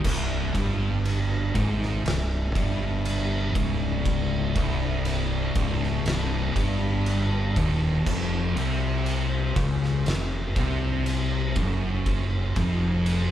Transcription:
0.04 C1 C2 C3 G3 D4, kick, crash
0.54 G1 G2, kick, ride
1.05 ride
1.54 G#1 G#2, kick, ride
1.83 snare
2.05 C1 C2, snare, ride
2.55 G1 G2, kick, ride
3.05 ride
3.55 C#1 C#2, kick, ride
4.05 kick, ride
4.56 C1 C2, kick, ride
5.05 ride
5.55 C#1 C#2, kick, ride
5.83 snare
6.04 C1 C2, snare, ride
6.56 G1 G2, kick, ride
7.06 ride
7.56 D#1 D#2, kick, ride
8.06 F1 F2 F3 G4 C5, kick, crash
8.55 C2 C3, ride
9.06 ride
9.56 C#2 C#3, kick, ride
9.84 snare
10.06 F1 F2, snare, ride
10.56 C2 C3, kick, ride
11.06 ride
11.56 F#1 F#2, kick, ride
12.06 G#4, kick, ride
12.56 F1 F2, kick, ride
13.06 ride

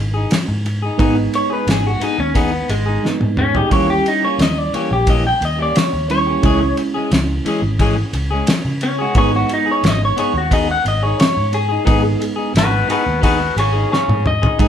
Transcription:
Already playing: G#1 G#3 B3 D#4
0.14 D#4 G#4
0.31 snare, ride
0.48 G#2, muted clean electric guitar stroke
0.65 muted clean electric guitar stroke, ride
0.82 D#4 G#4
0.98 G#1 G#3 B3 D#4 G#4, kick, ride
1.17 muted clean electric guitar stroke
1.33 C#5, muted clean electric guitar stroke, ride
1.50 D#4 G#4 B4
1.67 G#1 G#4, muted clean electric guitar stroke, snare, ride
1.87 F#4
2.00 B3 D#4 G#4, muted fingered electric bass stroke, ride
2.18 D#2 C#4, muted clean electric guitar stroke
2.34 B3 D#4 G#4, kick, ride
2.52 muted clean electric guitar stroke
2.68 G#1 G#3, muted clean electric guitar stroke, ride
2.86 D#4 G#4
3.03 G#3 B3 D#4, snare
3.20 G#2, muted clean electric guitar stroke, high tom
3.37 C#4, muted clean electric guitar stroke, mid tom
3.55 D#4 G4 G#4, floor tom
3.70 D#2 E3 G3 A#3 C#4 E4 G4 C#5, kick, ride
3.88 G4, muted clean electric guitar stroke
4.06 D#4, muted clean electric guitar stroke, ride
4.23 A#3 C#4 G4 C#5
4.39 D#2 D#5, muted clean electric guitar stroke, snare, ride
4.58 D5
4.73 E3 A#3 C#4 G4 C#5, muted fingered electric bass stroke, ride
4.91 A#1 G4, muted clean electric guitar stroke
5.07 E3 A#3 C#4 G4 D#5, kick, ride
5.25 G5, muted clean electric guitar stroke
5.41 D#2 D#5, muted clean electric guitar stroke, ride
5.59 A#3 C#4 G4 D5
5.76 C#5, snare, ride
5.93 D#2, muted clean electric guitar stroke
6.10 G3 C#4 E4 C#5, muted clean electric guitar stroke, ride
6.27 A#3 C#4 G4
6.42 C#2 E3 G#3 C#4 E4 G#4, kick, ride
6.61 muted clean electric guitar stroke
6.77 muted clean electric guitar stroke, ride
6.94 G#3 C#4 G#4
7.11 C#2, muted clean electric guitar stroke, snare, ride
7.45 E3 G#3 C#4 G#4, ride
7.62 G#1, muted clean electric guitar stroke
7.79 E3 G#3 C#4 G#4, kick, ride
7.96 muted clean electric guitar stroke
8.13 C#2, muted clean electric guitar stroke, ride
8.31 G#3 C#4 G#4
8.47 snare, ride
8.65 C#3, muted clean electric guitar stroke
8.81 C#4, muted clean electric guitar stroke, ride
8.98 G#3 C#4 F#4 G#4
9.15 G#1 G#3 B3 D#4 G#4 C#5, kick, ride
9.33 F#4, muted clean electric guitar stroke
9.49 muted clean electric guitar stroke, ride
9.54 D#4
9.66 D#4 G#4
9.71 C#5
9.83 G#1, muted clean electric guitar stroke, snare, ride
9.87 D#5
10.05 C#5
10.16 B3 D#4 G#4 C#5, ride
10.34 D#2, muted clean electric guitar stroke
10.38 F#4
10.51 B3 D#4 G#4 D#5, kick, ride
10.69 F#5, muted clean electric guitar stroke
10.85 G#1 D#5, muted clean electric guitar stroke, ride
11.03 D#4 G#4 C#5
11.20 C#5, snare, ride
11.35 G#2, muted clean electric guitar stroke
11.52 G#4, muted clean electric guitar stroke, ride
11.69 D#4 G#4
11.85 G#1 G#3 B3 D#4 G#4, kick, ride
12.03 muted clean electric guitar stroke
12.20 muted clean electric guitar stroke, ride
12.36 D#4 G#4
12.53 G#1 F#4, muted clean electric guitar stroke, snare, ride
12.58 B4
12.87 B3 D#4 F#4 G#4, muted fingered electric bass stroke, ride
12.92 B4
13.05 D#2, muted clean electric guitar stroke
13.21 B3 D#4 F#4 G#4 B4, kick, ride
13.40 muted clean electric guitar stroke
13.56 G#1 G#4 C#5, muted clean electric guitar stroke, ride
13.72 D#4 G#4
13.92 G#4 C#5, snare
14.07 G#2, muted clean electric guitar stroke, high tom
14.25 D#5, muted clean electric guitar stroke, mid tom
14.42 D#4 G#4, floor tom
14.59 G#2 G#3 B3 D#4 G#4, kick, ride

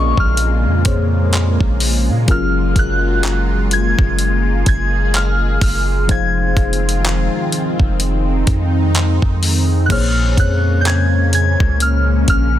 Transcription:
Already playing: A#1 A#2 C#3 G#3 A#3 C4 F4 G#4 D5 D#5 C#6, downlifter
0.17 A#1 F6, kick
0.37 closed hi-hat
0.66 F2
0.85 F2 A#2 A#3 G#4 C5 C#5, kick, closed hi-hat
1.33 clap, closed hi-hat
1.61 A#1, kick
1.80 open hi-hat
2.09 A#2
2.27 F#1 F#3 C#4 F4 G#4 A#4, kick, closed hi-hat
2.31 F6
2.76 F#1 F#6, kick, closed hi-hat
3.23 clap, closed hi-hat
3.71 G#6, closed hi-hat
3.99 F#1, kick
4.19 G#4, closed hi-hat
4.66 F#1 G#6, kick, closed hi-hat
5.14 F6, clap, closed hi-hat
5.61 F#1 F6, kick, open hi-hat
6.08 F1 D#3 F3 C4 D#4 F4 G#4 C5 F5 G#6, kick, closed hi-hat
6.57 F1, kick, closed hi-hat
6.73 closed hi-hat
6.89 closed hi-hat
7.05 clap, closed hi-hat
7.52 closed hi-hat
7.80 F1, kick
8.00 D#4, closed hi-hat
8.47 F2, kick, closed hi-hat
8.95 clap, closed hi-hat
9.22 F2, kick
9.43 open hi-hat
9.86 A#2 C#3 G#3 A#3 C#4 G#4 F#6
9.90 A#1 C5 C#5 F6, kick, closed hi-hat, crash
10.37 F2 F#6, kick, closed hi-hat
10.81 G6
10.85 G#6, clap, closed hi-hat
11.33 G#6, closed hi-hat
11.60 C#2, kick
11.80 F6, closed hi-hat
12.28 A#1 F6, kick, closed hi-hat

